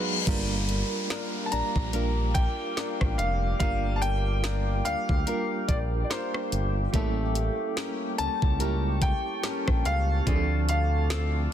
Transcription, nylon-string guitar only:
Already playing: G#3 F#4
0.27 G3
1.10 D4 F4 A#4
1.52 D4
1.93 A#4
2.77 D4 F4 A#4
3.60 G3
4.43 D4 F4 A#4
4.85 D4
5.27 A#4
6.10 D4 F4 A#4
6.94 A3
7.77 C#4 G4 A#4
8.18 C#4
8.60 A#4
9.44 C#4 G4 A#4
10.27 D3
11.10 C4 F4 A4

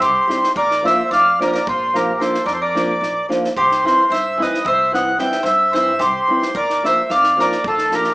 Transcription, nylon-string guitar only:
0.28 G3 C4 E4 G4
0.83 F3 A#3 D4 F4
1.39 F3 A#3 D4 F4
1.93 F3 A#3 D4 F4
2.20 F3 A#3 D4 F4
2.75 F3 A#3 D4 F4
3.29 F3 A#3 D4 F4
3.84 E3 G3 C4 E4
4.37 E3 G3 C4 E4
4.92 E3 G3 C4 E4
5.18 E3 G3 C4 E4
5.74 E3 G3 C4 E4
6.28 E3 G3 C4 E4
6.83 F3 A#3 D4 F4
7.37 F3 A#3 D4 F4
7.91 F3 A#3 D4 F4

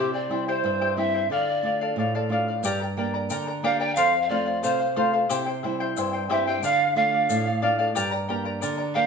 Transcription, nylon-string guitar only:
Already playing: C3
0.29 G3 C4 E4
0.64 G2
0.96 G3 C4 E4
1.30 D3
1.62 A3 D4 F4
1.96 A2
2.29 A3 D4 F4
2.63 G2
2.97 A#3 D4 G4
3.30 D3
3.63 A#3 D4 G4
3.97 F2
4.30 A3 C4 F4
4.64 C3
4.97 A3 C4 F4
5.31 C3
5.63 G3 C4 E4
5.97 G2
6.29 G3 C4 E4
6.63 D3
6.95 A3 D4 F4
7.29 A2
7.62 A3 D4 F4
7.96 G2
8.29 A#3 D4 G4
8.63 D3
8.96 A#3 D4 G4

